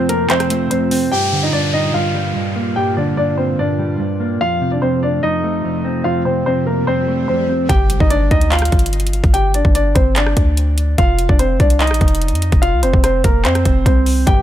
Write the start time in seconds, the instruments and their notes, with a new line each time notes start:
Already playing: clean electric guitar F2 C3 C4, analog synth pad C3 A3 F4
0.09 grand piano A#3 A#4, closed hi-hat
0.30 clean electric guitar F2, grand piano C4 C5, clap, closed hi-hat
0.40 cross-stick, closed hi-hat
0.50 clean electric guitar A3, closed hi-hat
0.70 clean electric guitar F2, grand piano C4 C5, closed hi-hat
0.91 clean electric guitar C4, open hi-hat
1.12 clean electric guitar G2, analog synth pad A#2 G3 F4, grand piano G4 G5, downlifter
1.32 clean electric guitar D3
1.43 grand piano D#4 D#5
1.53 clean electric guitar G2, grand piano D4 D5
1.73 grand piano D#4 D#5
1.94 clean electric guitar G2, grand piano F4 F5
2.15 clean electric guitar G3
2.35 clean electric guitar G2
2.56 clean electric guitar A#3
2.76 clean electric guitar G2, grand piano G4 G5
2.97 clean electric guitar D3, grand piano D4 D5
3.17 clean electric guitar G2, grand piano D4 D5
3.38 grand piano C4 C5
3.59 clean electric guitar G2, grand piano D4 D5
3.79 clean electric guitar G3
4.00 clean electric guitar G2
4.20 clean electric guitar A#3
4.41 clean electric guitar F2, analog synth pad C3 A3, grand piano F4 F5, swell
4.61 clean electric guitar C3
4.72 grand piano D4 D5
4.82 clean electric guitar F2, grand piano C4 C5
5.03 grand piano D4 D5
5.23 clean electric guitar F2, grand piano D#4 D#5
5.44 clean electric guitar A3
5.64 clean electric guitar F2
5.85 clean electric guitar C4
6.04 clean electric guitar F2, grand piano F4 F5
6.25 clean electric guitar C3, grand piano C4 C5
6.46 clean electric guitar F2, grand piano C4 C5
6.66 grand piano A#3 A#4
6.87 clean electric guitar F2, grand piano C4 C5
7.08 clean electric guitar A3
7.28 clean electric guitar F2, grand piano C4 C5
7.49 clean electric guitar C4
7.69 808-style bass G1, grand piano G4 G5, kick, closed hi-hat, impact
7.90 closed hi-hat
8.00 808-style bass G1, grand piano D#4 D#5, kick
8.10 grand piano D4 D5, closed hi-hat
8.31 808-style bass D2, grand piano D#4 D#5, kick, closed hi-hat
8.41 closed hi-hat
8.52 grand piano F4 F5, clap, closed hi-hat
8.59 cross-stick, closed hi-hat
8.65 closed hi-hat
8.72 808-style bass G1, kick, closed hi-hat
8.79 closed hi-hat
8.86 closed hi-hat
8.93 closed hi-hat
9.00 closed hi-hat
9.07 closed hi-hat
9.13 closed hi-hat
9.24 808-style bass G1, kick, closed hi-hat
9.34 grand piano G4 G5, closed hi-hat
9.54 grand piano D4 D5, closed hi-hat
9.65 808-style bass G1, kick
9.75 grand piano D4 D5, closed hi-hat
9.95 808-style bass G1, grand piano C4 C5, kick, closed hi-hat
10.16 grand piano D4 D5, clap, closed hi-hat
10.27 cross-stick
10.37 808-style bass D2, kick, closed hi-hat
10.57 closed hi-hat
10.78 closed hi-hat
10.98 808-style bass F1, grand piano F4 F5, kick, closed hi-hat
11.19 closed hi-hat
11.29 808-style bass F1, grand piano D4 D5, kick
11.39 grand piano C4 C5, closed hi-hat
11.60 808-style bass C2, grand piano D4 D5, kick, closed hi-hat
11.70 closed hi-hat
11.80 grand piano D#4 D#5, clap, closed hi-hat
11.87 808-style bass A1, cross-stick, closed hi-hat
11.94 closed hi-hat
12.01 808-style bass F1, kick, closed hi-hat
12.08 closed hi-hat
12.15 closed hi-hat
12.22 closed hi-hat
12.28 808-style bass F2, closed hi-hat
12.35 closed hi-hat
12.42 closed hi-hat
12.52 808-style bass F1, kick, closed hi-hat
12.62 grand piano F4 F5, closed hi-hat
12.73 808-style bass C2
12.83 808-style bass F1, grand piano C4 C5, closed hi-hat
12.94 808-style bass F1, kick
13.04 grand piano C4 C5, cross-stick, closed hi-hat
13.24 808-style bass F1, grand piano A#3 A#4, kick, closed hi-hat
13.45 808-style bass F2, grand piano C4 C5, clap, closed hi-hat
13.55 cross-stick, closed hi-hat
13.65 808-style bass F1, kick, closed hi-hat
13.86 808-style bass C2, grand piano C4 C5, kick, closed hi-hat
14.06 open hi-hat
14.27 808-style bass G1, clean electric guitar G2, grand piano G4 G5, kick, closed hi-hat